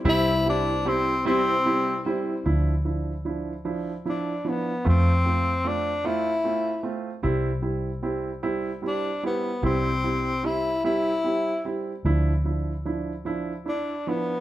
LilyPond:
<<
  \new Staff \with { instrumentName = "Tenor saxophone" } { \time 6/8 \key c \major \tempo 4. = 50 e'8 d'8 c'8 c'4 r8 | r2 d'8 b8 | c'4 d'8 e'4 r8 | r2 d'8 b8 |
c'4 e'8 e'4 r8 | r2 d'8 b8 | }
  \new Staff \with { instrumentName = "Grand piano" } { \time 6/8 \key c \major <g c' e'>8 <g c' e'>8 <g c' e'>8 <g c' e'>8 <g c' e'>8 <g c' e'>8 | <f d' e'>8 <f d' e'>8 <f d' e'>8 <f d' e'>8 <f d' e'>8 <f d' e'>8 | <a c' f'>8 <a c' f'>8 <a c' f'>8 <a c' f'>8 <a c' f'>8 <a c' f'>8 | <g c' e'>8 <g c' e'>8 <g c' e'>8 <g c' e'>8 <g c' e'>8 <g c' e'>8 |
<g c' e'>8 <g c' e'>8 <g c' e'>8 <g c' e'>8 <g c' e'>8 <g c' e'>8 | <f d' e'>8 <f d' e'>8 <f d' e'>8 <f d' e'>8 <d' e'>8 <f d' e'>8 | }
  \new Staff \with { instrumentName = "Steel-string acoustic guitar" } { \time 6/8 \key c \major <c e g c' e' c''>4 <g c' e' c''>8 <c e g c' e' c''>4 <g c' e' c''>8 | r2. | r2. | r2. |
r2. | r2. | }
  \new Staff \with { instrumentName = "Fingered electric bass" } { \clef bass \time 6/8 \key c \major c,2. | d,2. | f,2. | c,2. |
c,2. | d,2. | }
>>